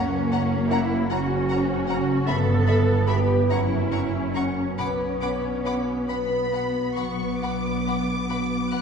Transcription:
Already playing: double bass section F#1, harp F#2 C#4, viola section A#3, cello section C#4
0.32 harp C#4, violin section F#5 A#5
0.71 cello section E4, harp F#4, violin section F#5 A#5
1.10 double bass section F#1, viola section C#4, cello section F#4, harp A#4, violin section F#5 A#5
1.49 harp F#4, violin section F#5 A#5
1.89 harp C#3, violin section F#5 A#5
2.28 double bass section G1, harp G2, viola section B3, cello section A4, violin section E5 B5
2.67 harp B3, violin section E5 B5
3.07 harp E4 B4, cello section G4, violin section E5 B5
3.50 double bass section F#1, harp F#2, viola section C#4, cello section E4, violin section F#5 A#5 C#6
3.92 harp C#4, violin section F#5 A#5 C#6
4.35 cello section C#4, harp F#4 A#4, violin section F#5 A#5 C#6
4.78 double bass section B1, harp B2, viola section B3, cello section C#4, violin section F#5 B5 D6
5.21 harp D4, violin section F#5 B5 D6
5.65 harp F#4, violin section F#5 B5 D6
6.08 double bass section B1, cello section B3, harp B4, violin section F#5 B5
6.52 harp F#4, violin section F#5 B5
6.95 harp F#3, violin section F#5 B5 C#6
7.41 double bass section B1, harp D4, violin section F#5 B5 D6
7.86 harp F#3, violin section F#5 B5
8.29 harp F#4, violin section F#5 B5
8.71 double bass section B1, harp B4, violin section F#5 B5 F#6

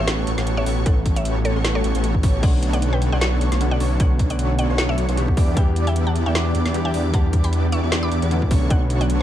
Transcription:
Already playing: ambient pad G3 A3 C#4
0.00 detuned saw bass A1, supersaw synth B3 F#4 G4 A4 C#5, synth pluck C#5 E5, digital synth lead C#5
0.08 snare, closed hi-hat
0.27 detuned saw bass A1, supersaw synth B3 F#4 G4 A4 C#5, digital synth lead C#5, closed hi-hat
0.38 detuned saw bass A1, supersaw synth B3 F#4 G4 A4 C#5, digital synth lead C#5, snare, closed hi-hat
0.47 closed hi-hat
0.57 synth pluck C#5 E5
0.66 detuned saw bass A1, supersaw synth B3 F#4 G4 A4 C#5, digital synth lead C#5, open hi-hat
0.86 detuned saw bass A1, supersaw synth B3 F#4 G4 A4 C#5, synth pluck A4 F#5, digital synth lead C#5, kick, closed hi-hat
1.06 kick, closed hi-hat
1.16 synth pluck C#5 E5, closed hi-hat
1.25 closed hi-hat
1.45 synth pluck A4 C#5, closed hi-hat
1.56 detuned saw bass A1, supersaw synth B3 F#4 G4 A4 C#5, digital synth lead C#5
1.65 snare, closed hi-hat
1.75 synth pluck A4 C#5
1.84 detuned saw bass A1, supersaw synth B3 F#4 G4 A4 C#5, digital synth lead C#5, closed hi-hat
1.95 detuned saw bass A1, supersaw synth B3 F#4 G4 A4 C#5, digital synth lead C#5, closed hi-hat
2.04 closed hi-hat
2.15 kick
2.23 detuned saw bass A1, supersaw synth B3 F#4 G4 A4 C#5, digital synth lead C#5, kick, open hi-hat
2.41 detuned saw bass B1, felt piano D3 A3 B3 C#5, ambient pad D3 B3, digital synth lead C#5, synth pluck D5 F#5, kick, closed hi-hat, crash
2.45 felt piano F#4
2.63 closed hi-hat
2.73 synth pluck D5 F#5, closed hi-hat
2.82 closed hi-hat
2.93 synth pluck B4 G5
3.02 closed hi-hat
3.12 detuned saw bass B1, supersaw synth B3 D4 F#4 A4 C#5, digital synth lead C#5, synth pluck D5 F#5
3.21 snare, closed hi-hat
3.41 detuned saw bass B1, supersaw synth B3 D4 F#4 A4 C#5, digital synth lead C#5, closed hi-hat
3.52 detuned saw bass B1, supersaw synth B3 D4 F#4 A4 C#5, digital synth lead C#5, snare, closed hi-hat
3.60 felt piano D3 A3 B3 C#4 F#4, closed hi-hat
3.71 synth pluck D5 F#5
3.80 detuned saw bass B1, supersaw synth B3 D4 F#4 A4 C#5, digital synth lead C#5, open hi-hat
3.98 detuned saw bass B1, felt piano D3 A3 B3 F#4 C#5, supersaw synth B3 D4 F#4 A4 C#5, digital synth lead C#5, synth pluck D5 F#5, kick, closed hi-hat
4.19 kick, closed hi-hat
4.30 synth pluck D5 F#5, closed hi-hat
4.39 closed hi-hat
4.59 synth pluck D5 F#5, closed hi-hat
4.70 detuned saw bass B1, supersaw synth B3 D4 F#4 A4 C#5, digital synth lead C#5
4.78 snare, closed hi-hat
4.89 synth pluck C#5 E5
4.98 detuned saw bass B1, supersaw synth B3 D4 F#4 A4 C#5, digital synth lead C#5, closed hi-hat
5.09 detuned saw bass B1, supersaw synth B3 D4 F#4 A4 C#5, digital synth lead C#5, closed hi-hat
5.17 felt piano E3 G3 B3 D4 G4, closed hi-hat
5.28 kick
5.37 detuned saw bass E2, ambient pad E3 B3 D4 G4, supersaw synth B3 D4 E4 G4 D5, digital synth lead D5, kick, open hi-hat
5.55 detuned saw bass E2, felt piano E3 G3 B3 D4 G4, digital synth lead D5, synth pluck E5 G5, kick, closed hi-hat
5.76 closed hi-hat
5.87 synth pluck E5 G5, closed hi-hat
5.96 closed hi-hat
6.07 synth pluck F#5 A5
6.16 closed hi-hat
6.26 detuned saw bass E2, supersaw synth B3 D4 E4 G4 D5, digital synth lead D5, synth pluck E5 G5
6.35 snare, closed hi-hat
6.55 detuned saw bass E2, supersaw synth B3 D4 E4 G4 D5, digital synth lead D5, closed hi-hat
6.66 detuned saw bass E2, supersaw synth B3 D4 E4 G4 D5, digital synth lead D5, snare, closed hi-hat
6.73 felt piano E3 G3 B3 D4 G4, closed hi-hat
6.85 synth pluck E5 G5
6.94 detuned saw bass E2, supersaw synth B3 D4 E4 G4 D5, digital synth lead D5, open hi-hat
7.12 detuned saw bass E2, felt piano E3 G3 B3 D4 G4, supersaw synth B3 D4 E4 G4 D5, digital synth lead D5, synth pluck F#5 A5, kick, closed hi-hat
7.33 kick, closed hi-hat
7.44 synth pluck G5 B5, closed hi-hat
7.53 closed hi-hat
7.72 synth pluck E5 C#6, closed hi-hat
7.83 detuned saw bass E2, supersaw synth B3 D4 E4 G4 D5, digital synth lead D5
7.92 snare, closed hi-hat
8.03 synth pluck B5 D6
8.12 detuned saw bass E2, supersaw synth B3 D4 E4 G4 D5, digital synth lead D5, closed hi-hat
8.22 detuned saw bass E2, supersaw synth B3 D4 E4 G4 D5, digital synth lead D5, closed hi-hat
8.30 felt piano D3 A3 B3 C#4 F#4, closed hi-hat
8.42 kick
8.51 detuned saw bass B1, ambient pad D3 A3, supersaw synth B3 D4 F#4 A4 C#5, digital synth lead C#5, kick, open hi-hat
8.68 detuned saw bass B1, felt piano D3 A3 B3 F#4 C#5, supersaw synth B3 F#4, digital synth lead C#5, synth pluck D5 F#5, kick, closed hi-hat
8.90 closed hi-hat
9.01 synth pluck D5 F#5, closed hi-hat
9.10 closed hi-hat

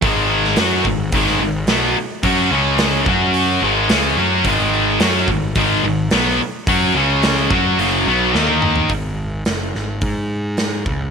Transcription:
0.02 picked electric bass G#1, distorted electric guitar G#2 D#3 G#3, kick, open hi-hat
0.45 snare
0.56 picked electric bass F#2, distorted electric guitar F#3 C#4 F#4, snare, open hi-hat
0.85 picked electric bass G#1, distorted electric guitar G#2 D#3, kick
1.12 picked electric bass G#1, distorted electric guitar G#2 D#3 G#3, kick, open hi-hat
1.26 snare
1.38 picked electric bass G#1, distorted electric guitar G#2 D#3
1.67 picked electric bass B1, distorted electric guitar B2 F#3 B3, snare, open hi-hat
1.96 muted picked electric bass stroke, muted overdriven electric guitar stroke, muted distorted electric guitar stroke
2.23 picked electric bass F#2, distorted electric guitar F#3 C#4 F#4, kick, open hi-hat
2.51 picked electric bass C#2, distorted electric guitar C#3 G#3 C#4
2.78 snare, open hi-hat
3.06 picked electric bass F#2, distorted electric guitar F#3 C#4 F#4, kick
3.34 open hi-hat
3.62 picked electric bass G#1, distorted electric guitar G#2 D#3 G#3
3.89 picked electric bass C#2, distorted electric guitar C#3 G#3 C#4, snare, open hi-hat
4.17 picked electric bass F#2, distorted electric guitar F#3 C#4 F#4
4.44 picked electric bass G#1, distorted electric guitar G#2 D#3 G#3, kick, open hi-hat
5.00 picked electric bass F#2, distorted electric guitar F#3 C#4 F#4, snare, open hi-hat
5.28 picked electric bass G#1, distorted electric guitar G#2 D#3, kick
5.55 picked electric bass G#1, distorted electric guitar G#2 D#3 G#3, kick, open hi-hat
5.83 picked electric bass G#1, distorted electric guitar G#2 D#3
6.11 picked electric bass B1, distorted electric guitar B2 F#3 B3, snare, open hi-hat
6.39 muted picked electric bass stroke, muted distorted electric guitar stroke, muted overdriven electric guitar stroke
6.67 picked electric bass F#2, distorted electric guitar F#3 C#4 F#4, kick, open hi-hat
6.95 picked electric bass C#2, distorted electric guitar C#3 G#3 C#4
7.23 snare, open hi-hat
7.50 picked electric bass F#2, distorted electric guitar F#3 C#4 F#4, kick
7.79 picked electric bass F#1, distorted electric guitar F#2 C#3 F#3, open hi-hat
8.06 picked electric bass B1, distorted electric guitar B2 F#3 B3
8.34 picked electric bass D#2, distorted electric guitar D#3 A#3 D#4, snare
8.49 high tom
8.62 mid tom
8.75 floor tom
8.89 picked electric bass G#1, kick, open hi-hat
9.45 picked electric bass F#1, snare, open hi-hat
9.75 picked electric bass G#1, snare
10.01 picked electric bass G#2, kick, open hi-hat
10.57 snare, open hi-hat
10.85 picked electric bass C#2, kick

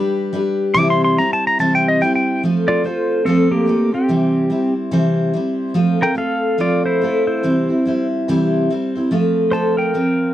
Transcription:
Already playing: steel-string acoustic guitar G3 D4 G4 B4
0.33 steel-string acoustic guitar G3 D4 G4 B4
0.74 steel-string acoustic guitar C3 E3 G3 C4 E4 C5, pedal steel guitar D6
0.90 pedal steel guitar C6
1.04 pedal steel guitar C6
1.18 steel-string acoustic guitar G3 C4 E4 C5, pedal steel guitar A#5
1.33 pedal steel guitar A5
1.47 pedal steel guitar A#5
1.59 steel-string acoustic guitar C3 E3 G3 C4 E4 C5, pedal steel guitar A5
1.75 pedal steel guitar G5
1.88 pedal steel guitar D#5
2.01 steel-string acoustic guitar G3 C4 E4 C5, pedal steel guitar G5
2.16 pedal steel guitar G5
2.43 steel-string acoustic guitar F3 A3 C4 F4 A4
2.68 pedal steel guitar F4 D5
2.84 steel-string acoustic guitar A3 C4 F4 A4, pedal steel guitar F4 C5
3.25 steel-string acoustic guitar F3 A3 C4 F4 A4, pedal steel guitar C4 A4
3.51 pedal steel guitar A#3 G4
3.66 steel-string acoustic guitar A3 C4 F4 A4
3.92 pedal steel guitar C4 G4, steel-string acoustic guitar C4 F4 A4
4.08 steel-string acoustic guitar C3 E3 G3 C4 E4 C5
4.50 steel-string acoustic guitar G3 C4 E4 C5
4.91 steel-string acoustic guitar C3 E3 G3 C4 E4 C5
5.33 steel-string acoustic guitar G3 C4 E4 C5
5.74 steel-string acoustic guitar F3 A3 C4 F4 A4
5.99 steel-string acoustic guitar C4 F4 A4, pedal steel guitar A#4 G5
6.15 steel-string acoustic guitar A3 C4 F4 A4, pedal steel guitar A4 F5
6.58 steel-string acoustic guitar F3 A3 C4 F4 A4, pedal steel guitar F4 D5
6.86 pedal steel guitar E4 C5
7.01 steel-string acoustic guitar A3 C4 F4 A4
7.27 pedal steel guitar E4 C5
7.43 steel-string acoustic guitar C3 E3 G3 C4 E4 C5
7.68 steel-string acoustic guitar G3 C4 E4 C5
7.86 steel-string acoustic guitar G3 C4 E4 C5
8.28 steel-string acoustic guitar C3 E3 G3 C4 E4 C5
8.70 steel-string acoustic guitar G3 C4 E4 C5
8.95 steel-string acoustic guitar G3 C4 E4 C5
9.11 steel-string acoustic guitar F3 A3 C4 F4 A4
9.51 steel-string acoustic guitar A3 C4 F4 A4, pedal steel guitar C5 A5
9.77 pedal steel guitar A#4 G5
9.94 steel-string acoustic guitar F3 C4 F4

